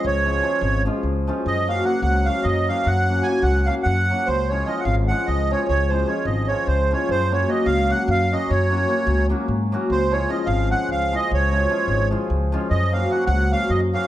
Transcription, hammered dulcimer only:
\new Staff \with { instrumentName = "Hammered dulcimer" } { \time 7/8 \key ges \lydian \tempo 4 = 149 r8 <f aes des' f'>8 <f aes des' f'>8 r8 <f aes des' f'>8 r8 <f aes des' f'>8 | r8 <ges bes des' ges'>8 <ges bes des' ges'>8 r8 <ges bes des' ges'>8 r8 <ges bes des' ges'>8 | r8 <ges bes des' ges'>8 <ges bes des' ges'>8 r8 <ges bes des' ges'>8 r8 <ges bes des' ges'>8 | r8 <f aes des' f'>8 <f aes des' f'>8 r8 <f aes des' f'>8 r8 <f aes des' f'>8 |
r8 <f aes des' f'>8 <f aes des' f'>8 r8 <f aes des' f'>8 r8 <f aes des' f'>8 | r8 <ges bes des' ges'>8 <ges bes des' ges'>8 r8 <ges bes des' ges'>8 r8 <ges bes des' ges'>8 | r8 <ges bes des' ges'>8 <ges bes des' ges'>8 r8 <ges bes des' ges'>8 r8 <ges bes des' ges'>8 | r8 <f aes des' f'>8 <f aes des' f'>8 r8 <f aes des' f'>8 r8 <f aes des' f'>8 |
r8 <f aes des' f'>8 <f aes des' f'>8 r8 <f aes des' f'>8 r8 <f aes des' f'>8 | r8 <ges bes des' ges'>8 <ges bes des' ges'>8 r8 <ges bes des' ges'>8 r8 <ges bes des' ges'>8 | }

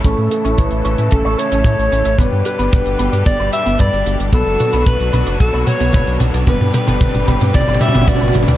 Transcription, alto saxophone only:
\new Staff \with { instrumentName = "Alto saxophone" } { \time 4/4 \key a \mixolydian \tempo 4 = 112 a'4 b'4 a'8 cis''4. | b'8 b'4. d''8 e''8 d''8. r16 | a'4 b'4 a'8 cis''4 r8 | b'8 b'4. d''8 e''8 d''8. r16 | }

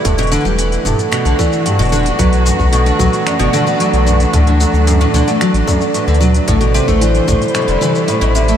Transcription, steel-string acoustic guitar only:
\new Staff \with { instrumentName = "Steel-string acoustic guitar" } { \clef bass \time 4/4 \key e \minor \tempo 4 = 112 g,16 b,16 d16 g16 e8 g,16 r16 b,16 d16 e8 g,16 b,16 d16 g16 | fis8 fis,16 r16 b,16 d16 fis8 fis,16 b,16 d16 b16 fis8 fis,16 r16 | a,16 d16 fis8 fis,16 a,16 d16 a16 fis8 fis,16 r16 a,16 d16 fis8 | a,16 b,16 c16 a16 e8 a,16 r16 b,16 c16 e8 a,16 b,16 c16 a16 | }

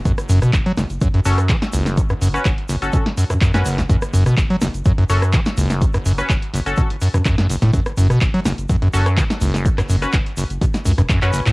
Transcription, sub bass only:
\new Staff \with { instrumentName = "Sub bass" } { \clef bass \time 4/4 \key fis \minor \tempo 4 = 125 fis,,16 r16 fis,,16 r16 fis,,16 r8 fis,,16 r8 fis,,16 r8. cis,16 r16 | r8 fis,,16 r16 fis,,16 r8 fis,,16 r8. fis,16 r8. fis,,16 | fis,,16 r16 fis,,16 r16 fis,,16 r8 fis,,16 r8 fis,,16 r8. cis,16 r16 | r8 fis,,16 r16 fis,,16 r8 fis,,16 r8. fis,16 r8. e,,16 |
fis,,16 r16 fis,,16 r16 fis,,16 r8 fis,,16 r8 fis,,16 r8. cis,16 r16 | r8 fis,,16 r16 fis,,16 r8 fis,,16 r8 cis,16 e,,16 r8. cis,16 | }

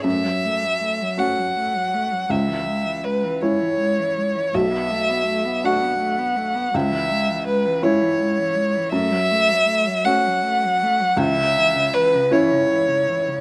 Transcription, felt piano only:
\new Staff \with { instrumentName = "Felt piano" } { \time 6/8 \key fis \minor \tempo 4. = 54 fis,4. <cis' fis'>4. | cis,4. <cis' e'>4. | b,,4. <d' fis'>4. | cis,4. <cis' e'>4. |
fis,4. <cis' fis'>4. | cis,4. <cis' e'>4. | }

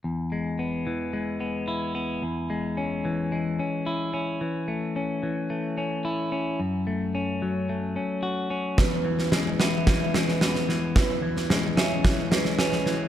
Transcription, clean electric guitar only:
\new Staff \with { instrumentName = "Clean electric guitar" } { \clef bass \time 4/4 \key e \major \tempo 4 = 110 e,8 gis8 b8 e8 gis8 b8 e'8 b8 | e,8 gis8 cis'8 e8 gis8 cis'8 e'8 cis'8 | e8 a8 cis'8 e8 a8 cis'8 e'8 cis'8 | fis,8 a8 cis'8 fis8 a8 cis'8 fis'8 cis'8 |
e,8 e8 gis8 b8 e8 gis8 b8 e8 | e,8 e8 gis8 cis'8 e8 gis8 cis'8 e8 | }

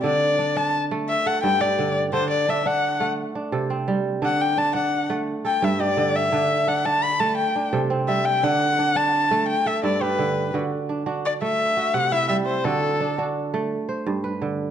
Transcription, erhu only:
\new Staff \with { instrumentName = "Erhu" } { \time 12/8 \key d \mixolydian \tempo 4. = 114 d''4. a''8 r4 e''8 fis''8 g''8 d''4 r8 | c''8 d''8 e''8 fis''4 r2. r8 | fis''8 g''8 a''8 fis''4 r4 g''8 e''8 d''4 e''8~ | e''4 fis''8 a''8 b''8 a''8 g''4 r4 e''8 g''8 |
fis''4. a''4. g''8 e''8 d''8 b'4. | r2 d''8 e''4. fis''8 e''8 e''8 c''8 | a'4. r1 r8 | }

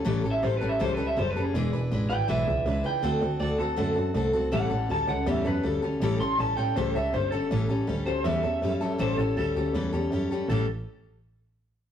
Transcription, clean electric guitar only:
\new Staff \with { instrumentName = "Clean electric guitar" } { \time 4/4 \key a \mixolydian \tempo 4 = 161 \tuplet 3/2 { r4 e''8 c''8 b'8 e''8 c''8 b'8 e''8 c''8 b'8 gis'8~ } | gis'8 r4 g''8 e''4. g''8~ | g''4 d''8 a'2 r8 | fis''4 a''8 fis''8 e''8 b'8 a'8 r8 |
r8 c'''8 a''8 g''8 c''8 e''8 c''8 a'8 | r4. c''8 e''2 | c''8 a'8 a'4 r2 | a'8 r2. r8 | }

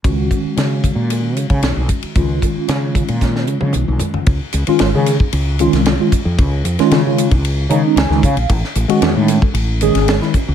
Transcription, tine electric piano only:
\new Staff \with { instrumentName = "Tine electric piano" } { \time 4/4 \key des \mixolydian \tempo 4 = 114 << { r1 | r1 | \key des \major r1 | r2. aes''8 f''8 |
r1 | } \\ { <ees aes des' ges'>1 | <ees aes des' f'>1 | r8. <ees aes des' f'>8 <ees aes des' aes'>8 <des' ees'>16 r8 <ees aes des' f'>8 r16 <ees aes des' f'>16 <des' f'>16 r16 | r8. <ees aes des' f'>8 <ees aes des' f'>8 <des' f'>16 r8 <ees aes des' ees'>8 r16 <ees aes des' ees'>16 <des' f'>16 r16 |
r8. <ees gis cis' ges'>8 <ees gis cis' ees'>8 <cis' a'>16 r8 <ees gis cis' gis'>8 r16 <ees gis cis' e'>16 <cis' ges'>16 r16 | } >> }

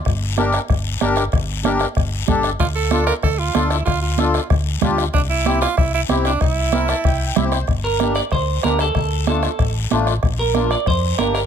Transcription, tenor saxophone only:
\new Staff \with { instrumentName = "Tenor saxophone" } { \time 4/4 \key g \dorian \tempo 4 = 189 r1 | r1 | f'8 a'4 bes'8 a'8 f'4 e'8 | f'8 f'4. r2 |
d'8 e'4 f'8 e'8 e'8 c'8 d'8 | e'2. r4 | r1 | r1 |
r1 | }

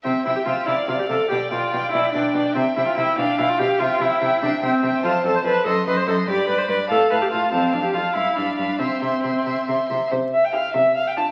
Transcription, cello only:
\new Staff \with { instrumentName = "Cello" } { \clef bass \time 6/8 \key c \major \tempo 4. = 96 c8 c8 c8 c8 c8 c8 | b,8 b,8 b,8 b,8 b,8 b,8 | c8 c8 c8 b,8 b,8 b,8 | c8 c8 c8 c8 c8 c8 |
f,8 f,8 f,8 fis,8 fis,8 fis,8 | g,8 g,8 g,8 a,8 a,8 a,8 | f,8 f,8 f,8 g,8 g,8 g,8 | c8 c8 c8 c8 c8 c8 |
c4. c4. | }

